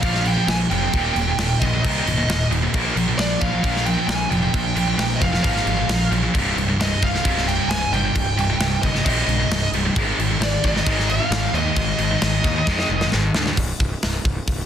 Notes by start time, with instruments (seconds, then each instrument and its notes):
Already playing: lead electric guitar F5
0.02 picked electric bass A#1, distorted electric guitar A#2 F3 A#3, kick, crash
0.14 snare
0.25 distorted electric guitar A#2 F3, lead electric guitar G5, crash
0.36 distorted electric guitar A#2 F3
0.47 picked electric bass A#1, distorted electric guitar A#2 F3, lead electric guitar G#5, snare, crash
0.70 picked electric bass F1, distorted electric guitar A#2 F3, lead electric guitar G5, crash
0.82 distorted electric guitar A#2 F3
0.93 picked electric bass D#1, distorted electric guitar D#2 A#2 D#3, kick, crash
1.15 picked electric bass D#1, distorted electric guitar D#2 A#2, crash
1.28 distorted electric guitar D#2 A#2
1.38 picked electric bass D#1, distorted electric guitar D#2 A#2, snare, crash
1.60 picked electric bass A#1, distorted electric guitar D#2 A#2, lead electric guitar D#5, kick, crash
1.73 distorted electric guitar D#2 A#2
1.83 picked electric bass C2, distorted electric guitar D#2 A#2 D#3, lead electric guitar D#5, kick, crash
2.06 picked electric bass C1, distorted electric guitar D#2 A#2, crash
2.18 distorted electric guitar D#2 A#2
2.28 picked electric bass D#1, distorted electric guitar D#2 A#2, snare, crash
2.50 picked electric bass D#1, distorted electric guitar D#2 A#2, crash
2.63 distorted electric guitar D#2 A#2
2.74 picked electric bass A#1, distorted electric guitar A#2 F3 A#3, kick, crash
2.96 picked electric bass A#1, distorted electric guitar A#2 F3, crash
3.08 distorted electric guitar A#2 F3
3.18 picked electric bass A#1, distorted electric guitar A#2 F3, lead electric guitar D5, snare, crash
3.41 picked electric bass A#1, distorted electric guitar A#2 F3, lead electric guitar F5, kick, crash
3.52 distorted electric guitar A#2 F3
3.63 picked electric bass A#1, distorted electric guitar A#2 F3 A#3, kick, crash
3.76 snare
3.86 distorted electric guitar A#2 F3, lead electric guitar G5, crash
3.97 distorted electric guitar A#2 F3
4.07 picked electric bass A#1, distorted electric guitar A#2 F3, lead electric guitar G#5, snare, crash
4.30 picked electric bass F1, distorted electric guitar A#2 F3, lead electric guitar G5, crash
4.42 distorted electric guitar A#2 F3
4.54 picked electric bass A#1, distorted electric guitar A#2 F3, kick, crash
4.76 picked electric bass A#1, distorted electric guitar A#2 F3, crash
4.87 distorted electric guitar A#2 F3
4.98 picked electric bass A#1, distorted electric guitar A#2 F3, snare, crash
5.16 lead electric guitar D#5
5.21 picked electric bass F1, distorted electric guitar A#2 F3, lead electric guitar F5, kick, crash
5.32 distorted electric guitar A#2 F3, snare
5.43 picked electric bass G#1, distorted electric guitar A#2 F3 A#3, lead electric guitar F5, kick, crash
5.56 snare
5.66 picked electric bass G#1, distorted electric guitar A#2 F3, crash
5.77 distorted electric guitar A#2 F3
5.88 picked electric bass A#1, distorted electric guitar A#2 F3, snare, crash
6.11 picked electric bass A#1, distorted electric guitar A#2 F3, crash
6.23 distorted electric guitar A#2 F3
6.34 picked electric bass C1, distorted electric guitar C2 G2 C3, kick, crash
6.56 picked electric bass C1, distorted electric guitar C2 G2, crash
6.68 distorted electric guitar C2 G2
6.77 picked electric bass C1, distorted electric guitar C2 G2, snare, crash
6.81 lead electric guitar D#5
7.02 picked electric bass C1, distorted electric guitar C2 G2, lead electric guitar F5, kick, crash
7.14 distorted electric guitar C2 G2, snare
7.24 picked electric bass C1, distorted electric guitar C2 G2 C3, kick, crash
7.37 snare
7.47 distorted electric guitar C2 G2, lead electric guitar G5, crash
7.59 distorted electric guitar C2 G2
7.68 picked electric bass C1, distorted electric guitar C2 G2, lead electric guitar G#5, snare, crash
7.92 picked electric bass G1, distorted electric guitar C2 G2, lead electric guitar G5, crash
8.04 distorted electric guitar C2 G2
8.15 picked electric bass C1, distorted electric guitar C2 G2, kick, crash
8.36 picked electric bass C1, distorted electric guitar C2 G2, crash
8.49 distorted electric guitar C2 G2
8.58 picked electric bass C1, distorted electric guitar C2 G2, snare, crash
8.82 picked electric bass G1, distorted electric guitar C2 G2, lead electric guitar D#5, kick, crash
8.94 distorted electric guitar C2 G2, snare
9.05 picked electric bass A#1, distorted electric guitar C2 G2 C3, lead electric guitar D#5, kick, crash
9.27 picked electric bass A#1, distorted electric guitar C2 G2, crash
9.39 distorted electric guitar C2 G2
9.50 picked electric bass C1, distorted electric guitar C2 G2, snare, crash
9.72 picked electric bass C1, distorted electric guitar C2 G2, crash
9.85 distorted electric guitar C2 G2
9.96 picked electric bass G#1, distorted electric guitar G#2 D#3 G#3, kick, crash
10.18 picked electric bass G#1, distorted electric guitar G#2 D#3, crash
10.30 distorted electric guitar G#2 D#3
10.39 picked electric bass G#1, distorted electric guitar G#2 D#3, snare, crash
10.44 lead electric guitar D5
10.64 picked electric bass G#1, distorted electric guitar G#2 D#3, lead electric guitar D5, kick, crash
10.75 distorted electric guitar G#2 D#3, lead electric guitar D#5, snare
10.86 picked electric bass G#1, distorted electric guitar G#2 D#3 G#3, kick, crash
10.99 snare
11.09 distorted electric guitar G#2 D#3, lead electric guitar F5, crash
11.20 distorted electric guitar G#2 D#3
11.30 picked electric bass G#1, distorted electric guitar G#2 D#3, snare, crash
11.53 picked electric bass D#2, distorted electric guitar G#2 D#3, lead electric guitar D#5, crash
11.65 distorted electric guitar G#2 D#3
11.76 picked electric bass G#1, distorted electric guitar G#2 D#3, kick, crash
11.98 picked electric bass G#1, distorted electric guitar G#2 D#3, crash
12.11 distorted electric guitar G#2 D#3
12.22 picked electric bass G#1, distorted electric guitar G#2 D#3, snare, crash
12.44 picked electric bass D#2, distorted electric guitar G#2 D#3, kick, crash
12.56 distorted electric guitar G#2 D#3
12.67 picked electric bass F2, distorted electric guitar G#2 D#3 G#3, kick, snare
12.79 snare
12.89 picked electric bass F1, distorted electric guitar G#2 D#3
13.01 distorted electric guitar G#2 D#3, snare
13.12 picked electric bass G#1, distorted electric guitar G#2 D#3, snare
13.34 picked electric bass D2, distorted electric guitar G#2 D#3, snare
13.46 distorted electric guitar G#2 D#3, snare
13.57 picked electric bass C1, kick, open hi-hat
13.80 picked electric bass C1, kick
14.03 picked electric bass C1, snare, open hi-hat
14.25 picked electric bass C1, kick
14.47 picked electric bass C1, kick, open hi-hat